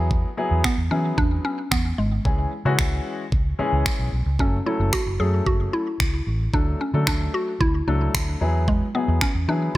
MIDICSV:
0, 0, Header, 1, 6, 480
1, 0, Start_track
1, 0, Tempo, 535714
1, 97, Time_signature, 4, 2, 24, 8
1, 8757, End_track
2, 0, Start_track
2, 0, Title_t, "Synth pluck"
2, 0, Program_c, 0, 84
2, 576, Note_on_c, 0, 59, 99
2, 684, Note_off_c, 0, 59, 0
2, 815, Note_on_c, 0, 61, 100
2, 1039, Note_off_c, 0, 61, 0
2, 1055, Note_on_c, 0, 62, 116
2, 1279, Note_off_c, 0, 62, 0
2, 1296, Note_on_c, 0, 61, 102
2, 1534, Note_on_c, 0, 59, 99
2, 1543, Note_off_c, 0, 61, 0
2, 1759, Note_off_c, 0, 59, 0
2, 1777, Note_on_c, 0, 56, 83
2, 2461, Note_off_c, 0, 56, 0
2, 3943, Note_on_c, 0, 61, 92
2, 4179, Note_on_c, 0, 64, 90
2, 4187, Note_off_c, 0, 61, 0
2, 4418, Note_on_c, 0, 66, 101
2, 4425, Note_off_c, 0, 64, 0
2, 4641, Note_off_c, 0, 66, 0
2, 4657, Note_on_c, 0, 68, 105
2, 4880, Note_off_c, 0, 68, 0
2, 4896, Note_on_c, 0, 66, 106
2, 5137, Note_on_c, 0, 64, 88
2, 5143, Note_off_c, 0, 66, 0
2, 5583, Note_off_c, 0, 64, 0
2, 5858, Note_on_c, 0, 62, 93
2, 6100, Note_on_c, 0, 61, 82
2, 6105, Note_off_c, 0, 62, 0
2, 6339, Note_on_c, 0, 62, 92
2, 6345, Note_off_c, 0, 61, 0
2, 6578, Note_on_c, 0, 66, 108
2, 6585, Note_off_c, 0, 62, 0
2, 6801, Note_off_c, 0, 66, 0
2, 6814, Note_on_c, 0, 64, 109
2, 7058, Note_on_c, 0, 62, 84
2, 7062, Note_off_c, 0, 64, 0
2, 7503, Note_off_c, 0, 62, 0
2, 7778, Note_on_c, 0, 56, 95
2, 8000, Note_off_c, 0, 56, 0
2, 8017, Note_on_c, 0, 59, 96
2, 8258, Note_on_c, 0, 61, 97
2, 8264, Note_off_c, 0, 59, 0
2, 8500, Note_on_c, 0, 62, 102
2, 8504, Note_off_c, 0, 61, 0
2, 8721, Note_off_c, 0, 62, 0
2, 8757, End_track
3, 0, Start_track
3, 0, Title_t, "Grand piano"
3, 0, Program_c, 1, 0
3, 0, Note_on_c, 1, 54, 79
3, 0, Note_on_c, 1, 59, 71
3, 0, Note_on_c, 1, 64, 72
3, 0, Note_on_c, 1, 68, 82
3, 240, Note_off_c, 1, 54, 0
3, 241, Note_off_c, 1, 59, 0
3, 242, Note_off_c, 1, 64, 0
3, 243, Note_off_c, 1, 68, 0
3, 335, Note_on_c, 1, 54, 85
3, 336, Note_on_c, 1, 59, 77
3, 337, Note_on_c, 1, 64, 75
3, 338, Note_on_c, 1, 68, 94
3, 626, Note_off_c, 1, 54, 0
3, 627, Note_off_c, 1, 59, 0
3, 627, Note_off_c, 1, 64, 0
3, 628, Note_off_c, 1, 68, 0
3, 814, Note_on_c, 1, 54, 70
3, 815, Note_on_c, 1, 59, 63
3, 816, Note_on_c, 1, 64, 66
3, 818, Note_on_c, 1, 68, 79
3, 1396, Note_off_c, 1, 54, 0
3, 1397, Note_off_c, 1, 59, 0
3, 1397, Note_off_c, 1, 64, 0
3, 1398, Note_off_c, 1, 68, 0
3, 2015, Note_on_c, 1, 52, 73
3, 2017, Note_on_c, 1, 56, 65
3, 2018, Note_on_c, 1, 61, 62
3, 2021, Note_on_c, 1, 68, 79
3, 2234, Note_off_c, 1, 52, 0
3, 2234, Note_off_c, 1, 56, 0
3, 2235, Note_off_c, 1, 61, 0
3, 2236, Note_off_c, 1, 68, 0
3, 2377, Note_on_c, 1, 52, 88
3, 2379, Note_on_c, 1, 56, 80
3, 2380, Note_on_c, 1, 61, 80
3, 2381, Note_on_c, 1, 66, 96
3, 2885, Note_off_c, 1, 52, 0
3, 2886, Note_off_c, 1, 56, 0
3, 2887, Note_off_c, 1, 61, 0
3, 2887, Note_off_c, 1, 66, 0
3, 3214, Note_on_c, 1, 52, 89
3, 3216, Note_on_c, 1, 56, 81
3, 3217, Note_on_c, 1, 61, 82
3, 3218, Note_on_c, 1, 68, 93
3, 3651, Note_off_c, 1, 52, 0
3, 3652, Note_off_c, 1, 56, 0
3, 3652, Note_off_c, 1, 61, 0
3, 3653, Note_off_c, 1, 68, 0
3, 3936, Note_on_c, 1, 54, 72
3, 3937, Note_on_c, 1, 57, 66
3, 3939, Note_on_c, 1, 61, 64
3, 3942, Note_on_c, 1, 69, 79
3, 4081, Note_off_c, 1, 54, 0
3, 4082, Note_off_c, 1, 57, 0
3, 4083, Note_off_c, 1, 61, 0
3, 4084, Note_off_c, 1, 69, 0
3, 4175, Note_on_c, 1, 54, 71
3, 4176, Note_on_c, 1, 57, 63
3, 4178, Note_on_c, 1, 61, 64
3, 4180, Note_on_c, 1, 69, 78
3, 4466, Note_off_c, 1, 54, 0
3, 4467, Note_off_c, 1, 57, 0
3, 4468, Note_off_c, 1, 61, 0
3, 4469, Note_off_c, 1, 69, 0
3, 4653, Note_on_c, 1, 54, 73
3, 4656, Note_on_c, 1, 57, 66
3, 4657, Note_on_c, 1, 61, 65
3, 4659, Note_on_c, 1, 69, 77
3, 5236, Note_off_c, 1, 54, 0
3, 5237, Note_off_c, 1, 57, 0
3, 5238, Note_off_c, 1, 61, 0
3, 5239, Note_off_c, 1, 69, 0
3, 5854, Note_on_c, 1, 54, 73
3, 5856, Note_on_c, 1, 57, 68
3, 5858, Note_on_c, 1, 62, 67
3, 5859, Note_on_c, 1, 69, 78
3, 6073, Note_off_c, 1, 54, 0
3, 6074, Note_off_c, 1, 57, 0
3, 6075, Note_off_c, 1, 62, 0
3, 6076, Note_off_c, 1, 69, 0
3, 6214, Note_on_c, 1, 54, 71
3, 6217, Note_on_c, 1, 57, 65
3, 6217, Note_on_c, 1, 62, 67
3, 6220, Note_on_c, 1, 69, 81
3, 6724, Note_off_c, 1, 54, 0
3, 6725, Note_off_c, 1, 57, 0
3, 6725, Note_off_c, 1, 62, 0
3, 6727, Note_off_c, 1, 69, 0
3, 7056, Note_on_c, 1, 54, 76
3, 7057, Note_on_c, 1, 57, 69
3, 7059, Note_on_c, 1, 62, 67
3, 7061, Note_on_c, 1, 69, 83
3, 7492, Note_off_c, 1, 54, 0
3, 7492, Note_off_c, 1, 57, 0
3, 7493, Note_off_c, 1, 62, 0
3, 7494, Note_off_c, 1, 69, 0
3, 7534, Note_on_c, 1, 54, 81
3, 7535, Note_on_c, 1, 59, 72
3, 7537, Note_on_c, 1, 64, 74
3, 7539, Note_on_c, 1, 68, 84
3, 7919, Note_off_c, 1, 54, 0
3, 7920, Note_off_c, 1, 59, 0
3, 7921, Note_off_c, 1, 64, 0
3, 7922, Note_off_c, 1, 68, 0
3, 8016, Note_on_c, 1, 54, 73
3, 8018, Note_on_c, 1, 59, 68
3, 8019, Note_on_c, 1, 64, 64
3, 8021, Note_on_c, 1, 68, 81
3, 8307, Note_off_c, 1, 54, 0
3, 8308, Note_off_c, 1, 59, 0
3, 8308, Note_off_c, 1, 64, 0
3, 8309, Note_off_c, 1, 68, 0
3, 8496, Note_on_c, 1, 54, 72
3, 8497, Note_on_c, 1, 59, 68
3, 8500, Note_on_c, 1, 64, 65
3, 8500, Note_on_c, 1, 68, 77
3, 8757, Note_off_c, 1, 54, 0
3, 8757, Note_off_c, 1, 59, 0
3, 8757, Note_off_c, 1, 64, 0
3, 8757, Note_off_c, 1, 68, 0
3, 8757, End_track
4, 0, Start_track
4, 0, Title_t, "Fingered electric bass"
4, 0, Program_c, 2, 33
4, 0, Note_on_c, 2, 40, 96
4, 206, Note_off_c, 2, 40, 0
4, 457, Note_on_c, 2, 40, 93
4, 544, Note_off_c, 2, 40, 0
4, 696, Note_on_c, 2, 40, 88
4, 784, Note_off_c, 2, 40, 0
4, 816, Note_on_c, 2, 52, 92
4, 991, Note_off_c, 2, 52, 0
4, 1058, Note_on_c, 2, 40, 98
4, 1232, Note_off_c, 2, 40, 0
4, 1538, Note_on_c, 2, 40, 97
4, 1712, Note_off_c, 2, 40, 0
4, 1776, Note_on_c, 2, 32, 84
4, 1951, Note_off_c, 2, 32, 0
4, 2018, Note_on_c, 2, 37, 101
4, 2192, Note_off_c, 2, 37, 0
4, 2377, Note_on_c, 2, 49, 99
4, 2464, Note_off_c, 2, 49, 0
4, 2500, Note_on_c, 2, 37, 83
4, 2673, Note_off_c, 2, 37, 0
4, 2977, Note_on_c, 2, 37, 93
4, 3152, Note_off_c, 2, 37, 0
4, 3337, Note_on_c, 2, 37, 84
4, 3424, Note_off_c, 2, 37, 0
4, 3577, Note_on_c, 2, 35, 80
4, 3664, Note_off_c, 2, 35, 0
4, 3697, Note_on_c, 2, 35, 90
4, 3784, Note_off_c, 2, 35, 0
4, 3817, Note_on_c, 2, 37, 93
4, 3904, Note_off_c, 2, 37, 0
4, 3937, Note_on_c, 2, 30, 103
4, 4112, Note_off_c, 2, 30, 0
4, 4297, Note_on_c, 2, 30, 92
4, 4384, Note_off_c, 2, 30, 0
4, 4537, Note_on_c, 2, 30, 90
4, 4624, Note_off_c, 2, 30, 0
4, 4657, Note_on_c, 2, 42, 100
4, 4832, Note_off_c, 2, 42, 0
4, 4896, Note_on_c, 2, 30, 103
4, 5071, Note_off_c, 2, 30, 0
4, 5377, Note_on_c, 2, 37, 87
4, 5552, Note_off_c, 2, 37, 0
4, 5616, Note_on_c, 2, 33, 90
4, 5791, Note_off_c, 2, 33, 0
4, 5856, Note_on_c, 2, 38, 103
4, 6031, Note_off_c, 2, 38, 0
4, 6215, Note_on_c, 2, 50, 102
4, 6303, Note_off_c, 2, 50, 0
4, 6339, Note_on_c, 2, 38, 91
4, 6513, Note_off_c, 2, 38, 0
4, 6815, Note_on_c, 2, 38, 98
4, 6990, Note_off_c, 2, 38, 0
4, 7056, Note_on_c, 2, 37, 87
4, 7230, Note_off_c, 2, 37, 0
4, 7297, Note_on_c, 2, 38, 91
4, 7471, Note_off_c, 2, 38, 0
4, 7536, Note_on_c, 2, 40, 91
4, 7885, Note_off_c, 2, 40, 0
4, 8136, Note_on_c, 2, 40, 93
4, 8223, Note_off_c, 2, 40, 0
4, 8375, Note_on_c, 2, 40, 95
4, 8463, Note_off_c, 2, 40, 0
4, 8494, Note_on_c, 2, 52, 94
4, 8670, Note_off_c, 2, 52, 0
4, 8757, End_track
5, 0, Start_track
5, 0, Title_t, "Muted fingered electric bass strokes"
5, 3217, Note_on_c, 9, 29, 47
5, 3307, Note_off_c, 9, 29, 0
5, 8757, End_track
6, 0, Start_track
6, 0, Title_t, "Drums"
6, 97, Note_on_c, 9, 36, 107
6, 186, Note_off_c, 9, 36, 0
6, 576, Note_on_c, 9, 26, 109
6, 580, Note_on_c, 9, 36, 99
6, 666, Note_off_c, 9, 26, 0
6, 669, Note_off_c, 9, 36, 0
6, 1057, Note_on_c, 9, 36, 109
6, 1147, Note_off_c, 9, 36, 0
6, 1538, Note_on_c, 9, 26, 114
6, 1538, Note_on_c, 9, 36, 116
6, 1627, Note_off_c, 9, 26, 0
6, 1628, Note_off_c, 9, 36, 0
6, 2018, Note_on_c, 9, 36, 106
6, 2107, Note_off_c, 9, 36, 0
6, 2497, Note_on_c, 9, 26, 112
6, 2500, Note_on_c, 9, 36, 101
6, 2586, Note_off_c, 9, 26, 0
6, 2590, Note_off_c, 9, 36, 0
6, 2977, Note_on_c, 9, 36, 109
6, 3067, Note_off_c, 9, 36, 0
6, 3458, Note_on_c, 9, 26, 109
6, 3458, Note_on_c, 9, 36, 107
6, 3547, Note_off_c, 9, 26, 0
6, 3547, Note_off_c, 9, 36, 0
6, 3937, Note_on_c, 9, 36, 104
6, 4027, Note_off_c, 9, 36, 0
6, 4416, Note_on_c, 9, 26, 111
6, 4420, Note_on_c, 9, 36, 98
6, 4505, Note_off_c, 9, 26, 0
6, 4509, Note_off_c, 9, 36, 0
6, 4897, Note_on_c, 9, 36, 107
6, 4986, Note_off_c, 9, 36, 0
6, 5377, Note_on_c, 9, 26, 109
6, 5377, Note_on_c, 9, 36, 110
6, 5466, Note_off_c, 9, 26, 0
6, 5467, Note_off_c, 9, 36, 0
6, 5856, Note_on_c, 9, 36, 108
6, 5946, Note_off_c, 9, 36, 0
6, 6335, Note_on_c, 9, 26, 114
6, 6339, Note_on_c, 9, 36, 100
6, 6424, Note_off_c, 9, 26, 0
6, 6428, Note_off_c, 9, 36, 0
6, 6816, Note_on_c, 9, 36, 112
6, 6906, Note_off_c, 9, 36, 0
6, 7298, Note_on_c, 9, 36, 118
6, 7299, Note_on_c, 9, 26, 112
6, 7387, Note_off_c, 9, 36, 0
6, 7388, Note_off_c, 9, 26, 0
6, 7776, Note_on_c, 9, 36, 107
6, 7866, Note_off_c, 9, 36, 0
6, 8255, Note_on_c, 9, 26, 112
6, 8259, Note_on_c, 9, 36, 102
6, 8345, Note_off_c, 9, 26, 0
6, 8349, Note_off_c, 9, 36, 0
6, 8757, End_track
0, 0, End_of_file